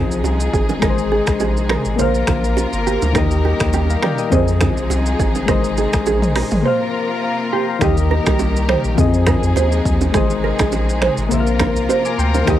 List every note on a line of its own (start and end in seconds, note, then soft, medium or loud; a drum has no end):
0.00 0.81 C3 medium
0.00 0.79 F3 medium
0.00 0.81 F3 medium
0.00 1.97 G#3 medium
0.00 0.80 C4 medium
0.00 1.97 D#4 medium
0.00 0.80 G#4 medium
0.00 1.97 G#4 medium
0.00 0.81 D#5 medium
0.11 0.22 A#1 loud
0.11 shaker medium
0.24 0.49 C2 medium
0.24 high bongo medium
0.24 shaker medium
0.40 shaker medium
0.53 0.78 G#1 medium
0.53 0.65 G#4 medium
0.53 kick medium
0.53 shaker medium
0.69 low bongo medium
0.69 shaker medium
0.80 1.21 G#1 loud
0.80 3.13 C3 medium
0.80 1.98 D#3 medium
0.80 1.95 G#3 medium
0.80 1.96 G#4 medium
0.80 0.94 A#4 loud
0.80 0.90 A#4 medium
0.80 finger snap medium
0.80 kick loud
0.80 cross-stick medium
0.80 low conga medium
0.80 shaker medium
0.85 1.98 D#5 medium
0.90 1.98 C5 medium
0.98 shaker medium
1.12 1.23 G#4 medium
1.12 low bongo medium
1.27 1.77 A#1 medium
1.27 finger snap medium
1.27 kick medium
1.27 cross-stick loud
1.27 shaker medium
1.40 1.52 G#4 medium
1.40 high bongo medium
1.40 shaker medium
1.57 shaker soft
1.69 1.81 A#4 medium
1.69 finger snap medium
1.69 cross-stick medium
1.69 mid tom medium
1.69 high bongo medium
1.85 1.97 G#1 medium
1.85 shaker medium
1.96 2.24 A#1 loud
1.96 3.14 F3 medium
1.96 3.12 A#3 medium
1.96 4.30 A#3 medium
1.96 3.14 F4 medium
1.96 3.13 A#4 medium
1.96 4.30 A#4 medium
1.96 2.20 C5 medium
1.96 3.13 C5 medium
1.96 low conga medium
1.96 shaker medium
2.01 3.14 F5 medium
2.15 shaker soft
2.27 2.66 A#1 medium
2.27 finger snap medium
2.27 kick medium
2.27 cross-stick loud
2.27 low bongo medium
2.27 low conga medium
2.27 shaker medium
2.44 shaker medium
2.57 high bongo medium
2.57 shaker medium
2.73 2.98 G1 medium
2.73 shaker medium
2.87 2.98 G4 medium
2.87 shaker medium
3.02 3.13 D2 medium
3.02 low bongo medium
3.02 shaker medium
3.13 3.54 D#2 loud
3.13 4.28 D#3 medium
3.13 4.31 D#3 medium
3.13 4.31 G3 medium
3.13 4.29 A#3 medium
3.13 4.31 G4 medium
3.13 4.30 G4 medium
3.13 3.27 A#4 loud
3.13 finger snap medium
3.13 kick loud
3.13 cross-stick medium
3.13 low conga medium
3.13 shaker medium
3.18 3.74 D#5 medium
3.31 shaker medium
3.45 3.56 G4 medium
3.45 low bongo medium
3.60 3.97 D#2 medium
3.60 finger snap medium
3.60 kick medium
3.60 cross-stick loud
3.60 shaker medium
3.73 3.85 G4 medium
3.73 high bongo medium
3.73 shaker medium
3.90 4.03 F5 medium
3.90 4.02 A#5 medium
3.90 shaker soft
4.02 4.14 A#4 medium
4.02 4.18 D5 medium
4.02 4.18 G5 medium
4.02 finger snap medium
4.02 cross-stick medium
4.02 mid tom medium
4.02 high bongo medium
4.18 4.47 A#4 medium
4.18 4.33 D#5 medium
4.18 shaker soft
4.30 4.70 F2 loud
4.30 5.47 C3 medium
4.30 5.45 F3 medium
4.30 5.47 F3 medium
4.30 6.63 G#3 medium
4.30 5.46 C4 medium
4.30 6.63 D#4 medium
4.30 6.63 G#4 medium
4.30 5.46 G#4 medium
4.30 4.53 C5 medium
4.30 kick loud
4.30 low conga medium
4.30 shaker medium
4.35 5.48 D#5 medium
4.48 shaker soft
4.61 finger snap medium
4.61 kick medium
4.61 cross-stick loud
4.61 low bongo medium
4.61 low conga medium
4.61 shaker medium
4.77 4.88 A#1 loud
4.77 shaker medium
4.90 5.15 C2 medium
4.90 high bongo medium
4.90 shaker medium
5.06 shaker medium
5.20 5.44 G#1 medium
5.20 5.31 G#4 medium
5.20 kick medium
5.20 shaker medium
5.35 low bongo medium
5.35 shaker medium
5.46 5.87 G#1 loud
5.46 6.64 C3 medium
5.46 6.64 D#3 medium
5.46 6.61 G#3 medium
5.46 6.62 G#4 medium
5.46 5.60 A#4 loud
5.46 6.63 C5 medium
5.46 finger snap medium
5.46 kick loud
5.46 cross-stick medium
5.46 low conga medium
5.46 shaker medium
5.51 6.64 D#5 medium
5.64 shaker medium
5.77 5.89 G#4 medium
5.77 low bongo medium
5.77 shaker medium
5.93 6.43 A#1 medium
5.93 finger snap medium
5.93 kick loud
5.93 cross-stick loud
5.93 shaker medium
6.06 6.18 G#4 medium
6.06 high bongo medium
6.06 shaker medium
6.22 mid tom medium
6.22 shaker soft
6.36 6.47 A#4 medium
6.36 finger snap medium
6.36 cross-stick medium
6.36 open hi-hat medium
6.36 high bongo medium
6.51 6.63 G#1 medium
6.51 mid tom medium
6.51 shaker soft
6.62 7.80 C3 medium
6.62 7.80 F3 medium
6.62 7.78 A#3 medium
6.62 7.80 A#3 medium
6.62 7.80 F4 medium
6.62 7.79 A#4 medium
6.62 7.80 A#4 medium
6.62 6.86 C5 medium
6.62 7.80 C5 medium
6.67 7.23 F5 medium
7.23 7.51 F5 medium
7.23 7.51 A#5 medium
7.52 7.64 G4 medium
7.52 7.68 G5 medium
7.52 7.68 C6 medium
7.68 7.96 F5 medium
7.68 7.96 A#5 medium
7.79 8.20 D#2 loud
7.79 8.94 D#3 medium
7.79 8.97 D#3 medium
7.79 8.97 G3 medium
7.79 8.95 A#3 medium
7.79 8.97 A#3 medium
7.79 8.97 G4 medium
7.79 7.93 G4 medium
7.79 8.96 G4 medium
7.79 8.97 A#4 medium
7.79 finger snap medium
7.79 kick loud
7.79 cross-stick medium
7.79 low conga medium
7.79 shaker medium
7.84 8.97 D#5 medium
7.97 shaker medium
8.11 8.22 A#4 medium
8.11 low bongo medium
8.26 8.76 C2 medium
8.26 8.36 G4 medium
8.26 finger snap medium
8.26 kick loud
8.26 cross-stick loud
8.26 low bongo medium
8.26 shaker medium
8.39 high bongo medium
8.39 shaker medium
8.56 shaker soft
8.69 8.80 C5 medium
8.69 finger snap medium
8.69 cross-stick medium
8.69 mid tom medium
8.84 8.96 A#1 medium
8.84 shaker soft
8.95 9.36 F2 loud
8.95 12.44 C3 medium
8.95 10.11 F3 medium
8.95 10.13 F3 medium
8.95 11.29 G#3 medium
8.95 10.12 C4 medium
8.95 11.29 D#4 medium
8.95 10.13 G#4 medium
8.95 kick loud
8.95 low conga medium
8.95 shaker medium
9.00 10.13 D#5 medium
9.14 shaker soft
9.27 9.39 A#4 medium
9.27 finger snap medium
9.27 kick medium
9.27 cross-stick loud
9.27 low bongo medium
9.27 low conga medium
9.27 shaker medium
9.43 9.54 F2 loud
9.43 shaker medium
9.56 9.81 D#2 medium
9.56 9.77 C5 medium
9.56 high bongo medium
9.56 shaker medium
9.72 shaker medium
9.85 10.10 D#2 medium
9.85 kick loud
9.85 shaker medium
10.01 high bongo medium
10.01 low bongo medium
10.01 shaker medium
10.12 10.53 G#1 loud
10.12 11.30 D#3 medium
10.12 11.27 G#3 medium
10.12 11.28 G#4 medium
10.12 11.30 G#4 medium
10.12 10.26 G#4 medium
10.12 11.29 C5 medium
10.12 finger snap medium
10.12 kick loud
10.12 cross-stick medium
10.12 low conga medium
10.12 shaker medium
10.17 11.30 D#5 medium
10.30 shaker medium
10.44 10.55 A#4 medium
10.44 low bongo medium
10.59 11.09 A#1 medium
10.59 10.69 G#4 medium
10.59 finger snap medium
10.59 kick loud
10.59 cross-stick loud
10.59 low bongo medium
10.59 shaker medium
10.72 high bongo medium
10.72 shaker medium
10.89 shaker soft
11.01 11.13 C5 medium
11.01 finger snap medium
11.01 cross-stick medium
11.01 mid tom medium
11.17 11.29 G#1 medium
11.17 shaker soft
11.29 11.70 A#1 loud
11.29 12.46 F3 medium
11.29 12.44 A#3 medium
11.29 12.59 A#3 medium
11.29 12.47 F4 medium
11.29 12.45 A#4 medium
11.29 12.59 A#4 loud
11.29 11.60 C5 medium
11.29 low conga medium
11.29 shaker medium
11.34 11.40 E5 medium
11.40 11.64 F5 medium
11.47 shaker soft
11.60 11.72 A#4 medium
11.60 finger snap medium
11.60 kick medium
11.60 cross-stick loud
11.60 low bongo medium
11.60 low conga medium
11.60 shaker medium
11.76 11.87 A#1 loud
11.76 shaker medium
11.89 12.10 C5 medium
11.89 high bongo medium
11.89 shaker medium
12.05 12.18 G#5 medium
12.05 12.18 D6 medium
12.05 shaker medium
12.18 12.43 D2 medium
12.18 12.34 G5 medium
12.18 12.34 C6 medium
12.18 shaker medium
12.34 12.59 C5 medium
12.34 12.59 F5 medium
12.34 high bongo medium
12.34 low bongo medium
12.34 shaker medium
12.45 12.59 D#2 loud
12.45 12.59 D#3 medium
12.45 12.59 G3 medium
12.45 12.59 A#3 medium
12.45 12.59 G4 medium
12.45 12.59 G4 loud
12.45 12.59 G4 medium
12.45 finger snap medium
12.45 kick loud
12.45 cross-stick medium
12.45 low conga medium
12.45 shaker medium
12.50 12.59 D#5 medium